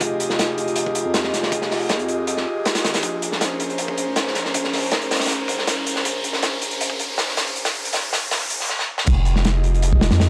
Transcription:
0.00 1.04 F1 loud
0.00 2.99 F4 medium
0.00 2.99 G4 medium
0.00 8.65 G#4 medium
0.00 2.99 D#5 medium
0.00 kick loud
0.00 closed hi-hat medium
0.00 riser medium
0.20 closed hi-hat medium
0.30 snare soft
0.39 snare loud
0.39 closed hi-hat medium
0.58 closed hi-hat medium
0.68 closed hi-hat soft
0.76 closed hi-hat medium
0.86 kick medium
0.95 closed hi-hat medium
1.05 1.32 F2 medium
1.14 snare loud
1.14 closed hi-hat medium
1.24 snare medium
1.33 1.91 F1 medium
1.33 snare soft
1.33 closed hi-hat medium
1.43 snare medium
1.52 kick loud
1.52 closed hi-hat medium
1.62 snare soft
1.71 snare soft
1.71 open hi-hat medium
1.89 2.45 F2 medium
1.89 snare loud
1.89 closed hi-hat medium
1.99 closed hi-hat soft
2.08 closed hi-hat medium
2.27 closed hi-hat medium
2.37 snare soft
2.65 snare loud
2.65 closed hi-hat medium
2.75 snare loud
2.75 closed hi-hat medium
2.84 3.01 G#1 medium
2.84 snare loud
2.84 closed hi-hat medium
2.94 snare loud
2.94 closed hi-hat medium
3.03 4.06 A#1 loud
3.03 8.65 C#4 medium
3.03 8.65 A#4 medium
3.03 8.65 C5 medium
3.03 kick loud
3.03 closed hi-hat medium
3.22 closed hi-hat medium
3.32 snare soft
3.41 snare medium
3.41 closed hi-hat medium
3.60 closed hi-hat medium
3.70 closed hi-hat soft
3.78 closed hi-hat medium
3.88 kick medium
3.98 closed hi-hat medium
4.07 4.34 F1 medium
4.16 snare loud
4.16 closed hi-hat medium
4.27 snare medium
4.35 4.93 A#1 medium
4.35 snare soft
4.35 closed hi-hat medium
4.45 snare soft
4.54 kick loud
4.54 closed hi-hat loud
4.64 snare soft
4.73 snare soft
4.73 open hi-hat medium
4.91 5.49 F1 loud
4.91 snare loud
4.91 closed hi-hat medium
5.02 closed hi-hat soft
5.11 snare medium
5.11 closed hi-hat medium
5.16 snare medium
5.16 closed hi-hat medium
5.20 snare medium
5.20 closed hi-hat medium
5.25 snare medium
5.25 closed hi-hat medium
5.29 closed hi-hat medium
5.48 6.03 C2 medium
5.48 kick medium
5.48 closed hi-hat medium
5.58 snare soft
5.67 snare loud
5.67 closed hi-hat medium
5.86 closed hi-hat medium
5.96 snare soft
6.05 7.08 A#1 loud
6.05 kick loud
6.05 closed hi-hat medium
6.24 closed hi-hat medium
6.33 snare soft
6.43 snare loud
6.43 closed hi-hat medium
6.62 closed hi-hat medium
6.71 closed hi-hat soft
6.81 closed hi-hat medium
6.90 kick medium
6.99 closed hi-hat medium
7.09 7.36 F1 medium
7.18 snare loud
7.18 closed hi-hat medium
7.28 snare medium
7.37 7.95 A#1 medium
7.37 snare loud
7.37 closed hi-hat medium
7.47 closed hi-hat soft
7.56 closed hi-hat medium
7.65 snare loud
7.65 closed hi-hat medium
7.75 closed hi-hat soft
7.85 closed hi-hat medium
7.93 8.52 F1 loud
7.93 snare loud
7.93 closed hi-hat medium
8.13 snare loud
8.13 closed hi-hat medium
8.31 snare loud
8.31 closed hi-hat medium
8.41 snare soft
8.50 8.69 C#2 medium
8.50 closed hi-hat medium
8.60 snare soft
8.69 snare medium
8.79 snare medium
8.98 snare medium
9.07 10.10 F1 loud
9.07 10.29 F4 medium
9.07 10.29 G4 medium
9.07 10.29 G#4 medium
9.07 10.29 D#5 medium
9.07 kick loud
9.07 closed hi-hat medium
9.07 crash medium
9.25 closed hi-hat medium
9.36 snare medium
9.44 snare loud
9.44 closed hi-hat medium
9.64 closed hi-hat medium
9.75 closed hi-hat soft
9.82 closed hi-hat medium
9.93 kick medium
10.01 snare loud
10.01 closed hi-hat medium
10.11 10.29 F2 medium
10.11 snare loud
10.11 closed hi-hat medium
10.20 snare loud
10.20 closed hi-hat medium

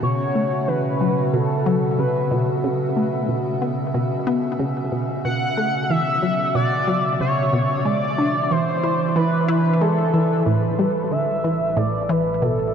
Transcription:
0.00 7.85 B2 medium
0.00 0.24 B2 medium
0.00 7.85 C#3 medium
0.00 7.85 F#4 medium
0.00 0.69 C#5 loud
0.00 12.74 E5 medium
0.35 0.66 A3 medium
0.68 0.90 E3 medium
0.68 1.35 B4 loud
1.01 1.14 F#3 medium
1.33 1.64 B2 medium
1.33 2.00 A4 loud
1.66 1.97 F#3 loud
1.99 2.20 C#3 medium
1.99 2.47 B4 medium
2.31 2.53 B2 medium
2.64 2.85 C#3 medium
2.97 3.27 A3 medium
3.29 3.42 B2 medium
3.62 3.93 B3 medium
3.94 4.25 B2 medium
4.27 4.48 B3 loud
4.59 4.81 C#3 medium
4.92 5.05 B2 medium
5.25 5.46 B2 medium
5.25 5.91 F#5 loud
5.57 5.88 A3 medium
5.90 6.11 E3 medium
5.90 6.54 E5 loud
6.22 6.35 F#3 medium
6.55 6.86 B2 medium
6.55 7.16 D5 loud
6.87 7.18 F#3 loud
7.20 7.42 C#3 medium
7.20 7.87 C#5 medium
7.53 7.74 B2 medium
7.85 10.46 E3 medium
7.85 8.07 G#3 medium
7.85 8.53 D5 loud
8.18 8.49 D4 medium
8.51 8.64 E3 medium
8.51 9.15 C5 medium
8.81 9.14 E4 medium
8.81 10.46 G#5 medium
9.16 9.47 E3 medium
9.16 9.46 B4 medium
9.48 9.70 E4 medium
9.48 9.83 B4 medium
9.81 10.03 G#3 medium
9.81 10.48 A4 medium
10.14 10.27 E3 medium
10.46 12.74 A1 medium
10.46 12.74 A2 medium
10.46 10.68 A2 medium
10.46 11.13 B4 loud
10.79 11.10 G3 medium
11.10 11.33 D3 medium
11.10 12.74 A3 medium
11.10 11.78 E5 loud
11.43 11.57 E3 medium
11.43 12.74 E4 medium
11.77 12.08 A2 medium
11.77 12.11 D5 loud
12.09 12.40 E3 medium
12.09 12.44 B4 medium
12.42 12.63 B2 medium
12.42 12.74 A4 medium

